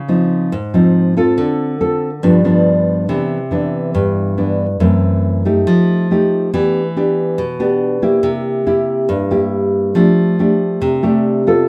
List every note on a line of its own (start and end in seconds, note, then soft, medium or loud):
0.00 0.49 C#3 medium
0.08 0.51 F3 medium
0.08 0.51 C4 medium
0.08 0.51 D#4 medium
0.52 1.36 G#2 medium
0.74 1.13 F3 medium
0.74 1.13 C4 medium
0.74 1.13 D#4 medium
1.17 1.77 C4 medium
1.17 1.77 F4 medium
1.17 1.78 A4 medium
1.38 2.21 D3 medium
1.80 2.09 C4 soft
1.80 2.09 F4 soft
1.80 2.09 A4 medium
2.23 3.07 G2 medium
2.23 2.41 F3 medium
2.23 2.41 B3 soft
2.23 2.41 D4 medium
2.44 3.05 F3 medium
2.44 3.06 B3 medium
2.44 3.05 D4 medium
3.09 3.93 C3 medium
3.09 3.37 E3 medium
3.09 3.37 B3 soft
3.09 3.37 D4 soft
3.51 4.34 E3 soft
3.51 4.34 B3 medium
3.51 4.34 D4 medium
3.95 4.78 G2 medium
4.37 4.65 E3 soft
4.37 4.65 B3 soft
4.37 4.65 D4 medium
4.80 5.64 F#2 medium
4.80 5.42 E3 soft
4.80 5.42 A3 soft
4.80 5.42 C4 medium
5.45 6.06 A3 medium
5.45 6.06 D#4 medium
5.45 6.07 G4 medium
5.67 6.51 F3 medium
6.11 6.51 A3 medium
6.11 6.52 D#4 soft
6.11 6.52 G4 medium
6.53 7.37 E3 medium
6.53 6.81 B3 soft
6.53 6.81 D4 soft
6.53 6.81 G4 medium
6.96 7.39 B3 medium
6.96 7.39 D4 medium
6.96 7.39 G4 medium
7.38 8.22 B2 medium
7.60 7.99 B3 medium
7.60 7.99 D4 medium
7.60 8.00 G4 medium
8.02 8.64 A#3 medium
8.02 8.63 E4 medium
8.02 8.64 G4 medium
8.23 9.07 C3 medium
8.66 9.28 A#3 soft
8.66 9.28 E4 medium
8.66 9.28 G4 medium
9.09 9.93 G2 medium
9.31 9.92 A#3 medium
9.31 9.92 E4 medium
9.31 9.92 G4 medium
9.95 10.79 F3 medium
9.95 10.35 A3 medium
9.95 10.35 D4 soft
9.95 10.35 G4 medium
10.39 11.00 A3 medium
10.39 11.00 D4 medium
10.39 11.00 G4 medium
10.81 11.66 C3 medium
11.03 11.43 A3 medium
11.03 11.43 D4 medium
11.03 11.43 G4 medium
11.47 11.69 B3 medium
11.47 11.69 F4 medium
11.47 11.69 A4 medium